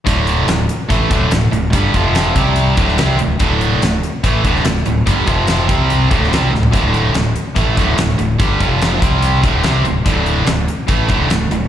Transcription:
<<
  \new Staff \with { instrumentName = "Distorted electric guitar" } { \clef bass \time 4/4 \key c \lydian \tempo 4 = 144 <d, a, d>4 <d, a,>8 r8 <a, e a>8 <d, a, d>8 <d, a,>8 <d, a,>8 | <g, d g>8 <f, c f>4 <c g c'>4 <d, a, d>8 <c g c'>8 <d, a,>8 | <d, a, d>4 <d, a,>8 r8 <a, e a>8 <d, a, d>8 <d, a,>8 <d, a,>8 | <g, d g>8 <f, c f>4 <c g c'>4 <d, a, d>8 <c g c'>8 <d, a,>8 |
<d, a, d>4 <d, a,>8 r8 <a, e a>8 <d, a, d>8 <d, a,>8 <d, a,>8 | <g, d g>8 <f, c f>4 <c g c'>4 <d, a, d>8 <c g c'>8 <d, a,>8 | <d, a, d>4 <d, a,>8 r8 <a, e a>8 <d, a, d>8 <d, a,>8 <d, a,>8 | }
  \new Staff \with { instrumentName = "Overdriven electric guitar" } { \clef bass \time 4/4 \key c \lydian <d, a, d>4 <d, a,>8 r8 <a, e a>8 <d, a, d>8 <d, a,>8 <d, a,>8 | <g, d g>8 <f, c f>4 <c g c'>4 <d, a, d>8 <c g c'>8 <d, a,>8 | <d, a, d>4 <d, a,>8 r8 <a, e a>8 <d, a, d>8 <d, a,>8 <d, a,>8 | <g, d g>8 <f, c f>4 <c g c'>4 <d, a, d>8 <c g c'>8 <d, a,>8 |
<d, a, d>4 <d, a,>8 r8 <a, e a>8 <d, a, d>8 <d, a,>8 <d, a,>8 | <g, d g>8 <f, c f>4 <c g c'>4 <d, a, d>8 <c g c'>8 <d, a,>8 | <d, a, d>4 <d, a,>8 r8 <a, e a>8 <d, a, d>8 <d, a,>8 <d, a,>8 | }
  \new Staff \with { instrumentName = "Fingered electric bass" } { \clef bass \time 4/4 \key c \lydian d,,4 d,,8 r8 a,,8 d,,8 d,,8 d,,8 | g,,8 f,,4 c,4 d,,8 c,8 d,,8 | d,,4 d,,8 r8 a,,8 d,,8 d,,8 d,,8 | g,,8 f,,4 c,4 d,,8 c,8 d,,8 |
d,,4 d,,8 r8 a,,8 d,,8 d,,8 d,,8 | g,,8 f,,4 c,4 d,,8 c,8 d,,8 | d,,4 d,,8 r8 a,,8 d,,8 d,,8 d,,8 | }
  \new DrumStaff \with { instrumentName = "Drums" } \drummode { \time 4/4 <hh bd>8 hh8 <hh sn>8 hh8 <hh bd>8 <hh bd>8 <hh sn>8 hh8 | <hh bd>8 <hh bd>8 <hh sn>8 <hh bd>8 hh8 <hh bd>16 sn16 <hh sn>8 hh8 | <hh bd>8 hh8 <hh sn>8 hh8 <hh bd>8 <hh bd>16 sn16 <hh sn>16 sn16 hh8 | <hh bd>8 <hh bd>8 <hh sn>8 <hh bd>8 hh8 <hh bd>16 sn16 <hh sn>8 sn16 tomfh16 |
<hh bd>8 hh8 <hh sn>8 hh8 <hh bd>8 <hh bd>8 <hh sn>16 sn16 hh8 | <hh bd>8 <hh bd>8 <hh sn>8 <hh bd>8 hh8 <hh bd>8 <hh sn>8 hh8 | <hh bd>8 hh8 <hh sn>8 hh8 <hh bd>8 <hh bd>8 <hh sn>8 hh8 | }
>>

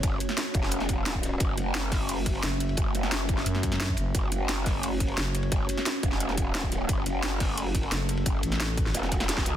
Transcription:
<<
  \new Staff \with { instrumentName = "Analog synth pad" } { \time 4/4 \key fis \minor \tempo 4 = 175 << { cis''1 | e''1~ | e''1 | cis''1~ |
cis''1 | a'1~ | a'1 | } \\ { <a cis' fis'>1~ | <a cis' fis'>1~ | <a cis' fis'>1~ | <a cis' fis'>1~ |
<a cis' fis'>1~ | <a cis' fis'>1~ | <a cis' fis'>1 | } >> }
  \new Staff \with { instrumentName = "FM bass" } { \clef bass \time 4/4 \key fis \minor r1 | r2. fis,,4 | r2 fis,4. fis,,8 | r2. fis,,4 |
r1 | r2. fis,,4 | r8 a,,4. r2 | }
  \new Staff \with { instrumentName = "Wobble bass" } { \clef bass \time 4/4 \key fis \minor fis,,8 r4 e,,2~ e,,8 | fis,,8 fis,,2~ fis,,8 r4 | fis,,8 fis,,4. r2 | fis,,8 fis,,2~ fis,,8 r4 |
fis,,8 r4 e,,2~ e,,8 | fis,,8 fis,,2~ fis,,8 r4 | fis,,8 r4. e,,4. cis,8 | }
  \new DrumStaff \with { instrumentName = "Drums" } \drummode { \time 4/4 <hh bd cymr>8 <hh cymr>16 sn16 <hh cymr sn>8 <hh bd cymr>16 sn16 <hh cymr>16 sn16 <hh bd cymr>8 <hh cymr sn>16 bd16 <hh cymr sn>8 | <hh bd cymr>8 <hh cymr>8 <hh cymr sn>8 <hh hho bd sn>8 <hh cymr>8 <hh bd cymr>16 cymr16 <hh cymr sn>8 <hh cymr>16 cymr16 | <hh bd cymr>8 <hh cymr>16 sn16 <hh cymr sn>8 <hh bd cymr>16 sn16 <hh cymr>16 sn16 <hh bd cymr>16 sn16 <hh cymr sn>16 bd16 <hh cymr>8 | <hh bd cymr>8 <hh cymr>8 <hh cymr sn>8 <hh hho bd sn>8 <hh cymr>8 <hh bd cymr>16 cymr16 <hh cymr sn>8 <hh cymr>16 cymr16 |
<hh bd cymr>8 <hh cymr>16 sn16 <hh cymr sn>8 <hh bd cymr>16 sn16 <hh cymr>16 sn16 <hh bd cymr>8 <hh cymr sn>16 bd16 <hh cymr sn>8 | <hh bd cymr>8 <hh cymr>8 <hh cymr sn>8 <hh hho bd sn>8 <hh cymr>8 <hh bd cymr>16 cymr16 <hh cymr sn>8 <hh cymr>16 cymr16 | <hh bd cymr>8 <hh cymr>16 sn16 <hh cymr sn>8 <hh bd cymr>16 sn16 <hh cymr sn>16 sn16 <hh bd cymr sn>16 <cymr sn>16 <hh sn>16 <bd cymr sn>16 <hh cymr sn>8 | }
>>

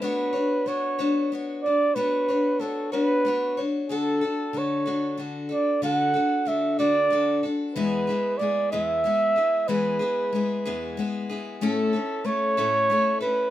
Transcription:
<<
  \new Staff \with { instrumentName = "Flugelhorn" } { \time 6/8 \key a \major \tempo 4. = 62 b'4 cis''4 r8 d''8 | b'4 a'8 b'4 r8 | a'4 cis''4 r8 d''8 | fis''4 e''8 d''4 r8 |
b'4 d''8 e''4. | b'2 r4 | a'4 cis''4. b'8 | }
  \new Staff \with { instrumentName = "Steel-string acoustic guitar" } { \time 6/8 \key a \major <b d' fis' cis''>8 <d' fis' cis''>8 <b d' fis' cis''>8 <b d' fis' cis''>8 <b d' fis' cis''>8 <d' fis'>8 | <b d' fis' cis''>8 <d' fis' cis''>8 <b d' fis' cis''>8 <b d' fis' cis''>8 <b d' fis' cis''>8 <d' fis' cis''>8 | <d d' fis' a'>8 <d' fis' a'>8 <d d' fis' a'>8 <d d' fis' a'>8 <d d' fis' a'>8 <d' fis' a'>8 | <d d' fis' a'>8 <d' fis' a'>8 <d d' fis' a'>8 <d d' fis' a'>8 <d d' fis' a'>8 <d' fis' a'>8 |
<e, e gis b e' gis'>8 <gis b e' gis'>8 <gis b e' gis'>8 <e, e gis b e' gis'>8 <gis b e' gis'>8 <gis b e' gis'>8 | <e, e gis b e' gis'>8 <gis b e' gis'>8 <gis b e' gis'>8 <e, e gis b e' gis'>8 <gis b e' gis'>8 <gis b e' gis'>8 | <a, a cis' e' a'>8 <cis' e' a'>8 <a cis' e' a'>8 <a, a cis' e' a'>8 <a cis' e' a'>8 <cis' e' a'>8 | }
>>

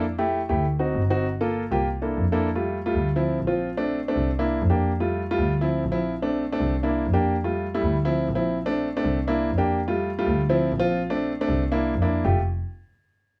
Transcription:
<<
  \new Staff \with { instrumentName = "Grand piano" } { \time 4/4 \key f \major \tempo 4 = 197 r8 <a e' g'>8. r16 <a e' g'>8 r8 <c' ees' fis'>8. r16 <c' ees' fis'>8 | r8 <bes f' a'>8. r16 <bes f' g'>8 r8 <bes d' e' a'>8. r16 <bes d' e' a'>8 | r16 <g a f'>8. r16 <g a f'>8. r16 <f c' e'>8. r16 <f c' f'>8. | r16 <a c' d'>8. r16 <a c' d'>8. r16 <bes d' e'>8. r16 <bes d' g'>8. |
r16 <g a f'>8. r16 <g a f'>8. r16 <f c' e'>8. r16 <f c' e'>8. | r16 <a c' d'>8. r16 <a c' d'>8. r16 <bes d' e'>8. r16 <bes d' g'>8. | r16 <g a f'>8. r16 <g a e'>8. r16 <f c' e'>8. r16 <f c' e'>8. | r16 <a c' d'>8. r16 <a c' d'>8. r16 <bes d' e'>8. r16 <bes d' g'>8. |
r16 <g a f'>8. r16 <g a f'>8. r16 <f c' e'>8. r16 <f c' f'>8. | r16 <a c' d'>8. r16 <a c' d'>8. r16 <bes d' e'>8. r16 <bes d' e'>8. | <a f' g'>8 r2. r8 | }
  \new Staff \with { instrumentName = "Double bass" } { \clef bass \time 4/4 \key f \major f,4. d,4. g,,4~ | g,,4. c,4. f,4~ | f,4. d,4. bes,,4~ | bes,,4. c,4. f,4~ |
f,4. d,4. bes,,4~ | bes,,4. c,4. f,4~ | f,4. d,4. bes,,4~ | bes,,4. c,4. f,4~ |
f,4. d,4. bes,,4~ | bes,,4. c,4. f,4 | f,,8 r2. r8 | }
>>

